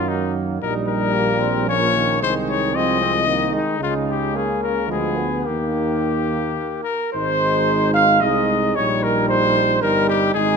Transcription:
0.00 0.59 F#2 medium
0.00 0.58 D#3 medium
0.00 0.58 F#3 medium
0.00 0.58 A#3 medium
0.08 0.35 D#4 medium
0.61 2.23 A#1 medium
0.61 1.64 G3 medium
0.61 1.70 G3 medium
0.61 1.15 D#4 medium
0.61 0.74 A#4 loud
0.88 1.66 A#4 loud
1.13 1.41 A#3 medium
1.39 1.69 C4 medium
1.67 1.96 F3 medium
1.67 2.24 A#3 medium
1.67 2.20 C#4 medium
1.67 2.21 C#5 loud
1.95 2.20 D#3 medium
2.19 3.63 C2 medium
2.19 2.77 D#3 medium
2.19 2.74 G#3 medium
2.19 2.75 D#4 medium
2.23 2.34 C5 loud
2.49 2.77 C#5 loud
2.73 3.29 F3 medium
2.73 3.29 G#3 medium
2.73 3.00 C4 medium
2.73 3.55 D#5 loud
3.00 3.13 C4 medium
3.26 3.81 D#3 medium
3.26 3.55 A#3 medium
3.26 3.79 D#4 medium
3.54 3.80 G#3 medium
3.54 3.81 D#4 medium
3.80 4.91 C#2 medium
3.80 4.91 C#3 medium
3.80 4.36 G#3 medium
3.80 4.36 D#4 medium
3.80 3.95 F4 loud
4.10 4.38 G4 medium
4.34 4.91 A#3 medium
4.34 4.88 C#4 medium
4.34 4.62 G#4 medium
4.63 4.90 A#4 medium
4.89 5.47 D2 medium
4.89 5.28 F3 medium
4.89 5.19 G#3 medium
4.89 5.45 B3 medium
4.89 5.47 G#4 medium
5.18 5.48 B3 medium
5.43 6.86 D#2 medium
5.43 6.83 D#3 medium
5.43 6.85 A#3 medium
5.43 6.86 A#3 medium
5.43 6.83 G4 medium
6.84 7.11 A#4 medium
6.84 7.12 A#4 medium
7.13 8.25 G#1 medium
7.13 8.19 G#3 medium
7.13 8.19 D#4 medium
7.13 7.93 C5 loud
7.13 7.93 C5 medium
7.94 8.24 F5 medium
7.94 8.22 F5 loud
8.21 8.77 C2 medium
8.21 8.78 G#3 medium
8.21 8.76 D#4 medium
8.21 8.77 D#5 loud
8.21 8.76 D#5 medium
8.75 9.84 A#1 medium
8.75 9.82 G3 medium
8.75 9.80 D#4 medium
8.75 9.05 C#5 loud
8.75 8.88 C#5 medium
9.03 9.28 A#4 loud
9.03 9.29 A#4 medium
9.29 9.81 C5 loud
9.29 9.83 C5 loud
9.82 10.34 G1 medium
9.82 10.37 G3 medium
9.82 10.34 D#4 medium
9.82 10.10 A#4 medium
9.82 10.08 A#4 loud
10.08 10.36 G4 medium
10.08 10.34 G4 loud
10.34 10.57 G#1 medium
10.34 10.57 G#3 medium
10.34 10.57 D#4 loud
10.34 10.57 G#4 loud

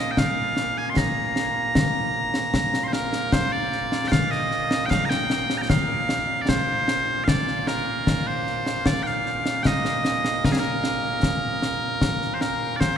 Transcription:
0.00 12.98 A#2 medium
0.00 12.98 A#3 medium
0.00 0.11 D#5 medium
0.11 0.18 G5 medium
0.17 0.78 F5 loud
0.17 concert bass drum soft
0.17 snare medium
0.57 snare medium
0.78 0.90 G#5 medium
0.90 0.97 C6 medium
0.96 2.84 A#5 loud
0.96 concert bass drum medium
0.96 snare medium
1.36 snare medium
1.75 concert bass drum medium
1.75 snare loud
2.34 snare medium
2.54 concert bass drum medium
2.54 snare medium
2.74 snare medium
2.84 2.93 C5 medium
2.84 2.88 C6 medium
2.93 3.33 A#4 medium
2.93 snare medium
3.13 snare medium
3.32 3.52 C5 loud
3.32 concert bass drum medium
3.32 snare loud
3.52 4.08 D5 medium
3.72 snare soft
3.92 snare medium
4.08 4.31 F5 loud
4.08 4.11 G5 loud
4.12 concert bass drum medium
4.12 snare loud
4.31 4.86 D#5 loud
4.31 snare soft
4.51 snare soft
4.71 snare medium
4.86 4.90 G5 loud
4.90 5.05 F5 loud
4.90 concert bass drum medium
4.90 snare medium
5.05 5.10 A#5 loud
5.10 5.58 G5 loud
5.10 snare medium
5.30 snare medium
5.50 snare medium
5.58 5.69 G5 medium
5.58 5.62 A#5 medium
5.69 6.42 F5 loud
5.69 concert bass drum medium
5.69 snare loud
6.09 snare medium
6.42 6.49 D5 medium
6.49 7.24 C5 loud
6.49 concert bass drum medium
6.49 snare loud
6.88 snare medium
7.24 7.28 F5 medium
7.24 concert bass drum medium
7.24 snare loud
7.28 7.68 D5 medium
7.48 snare soft
7.67 8.27 A#4 medium
7.67 snare medium
8.07 concert bass drum medium
8.07 snare medium
8.27 8.87 C5 medium
8.47 snare soft
8.66 snare medium
8.86 9.03 D5 medium
8.86 concert bass drum medium
8.86 snare loud
9.03 9.63 F5 medium
9.03 9.07 G5 medium
9.03 snare soft
9.26 snare soft
9.46 snare medium
9.63 10.45 D#5 loud
9.63 9.66 G5 loud
9.63 concert bass drum medium
9.63 snare medium
9.85 snare medium
10.05 snare medium
10.25 snare medium
10.44 10.52 A#4 medium
10.44 concert bass drum medium
10.44 snare loud
10.52 10.59 G#4 medium
10.59 12.34 A#4 medium
10.84 snare medium
11.23 concert bass drum medium
11.23 snare medium
11.62 snare medium
12.01 concert bass drum medium
12.01 snare medium
12.22 snare soft
12.34 12.41 C5 medium
12.41 12.76 A#4 medium
12.41 snare medium
12.76 12.96 C5 loud
12.76 12.80 D5 loud
12.81 concert bass drum soft
12.81 snare medium

